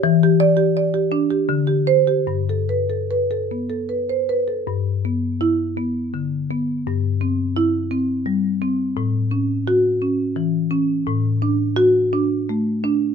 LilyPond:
\new Staff \with { instrumentName = "Marimba" } { \time 3/4 \key g \major \tempo 4 = 85 << { r8 d''8 r4. c''8 | r2 r16 c''16 r8 | r4 e'8. r4 r16 | r4 e'8. r4 r16 |
r4 fis'8. r4 r16 | r4 fis'8. r4 r16 | } \\ { e16 g'8 g'16 d''16 g'16 d'16 g'16 d16 g'8 g'16 | g,16 a'16 b'16 a'16 b'16 a'16 b16 a'16 b'8 b'16 a'16 | g,8 b8. r16 b8 d8 b8 | g,8 c'8. r16 c'8 g8 c'8 |
a,8 cis'8. r16 cis'8 e8 cis'8 | a,8 d'8. r16 d'8 a8 d'8 | } >> }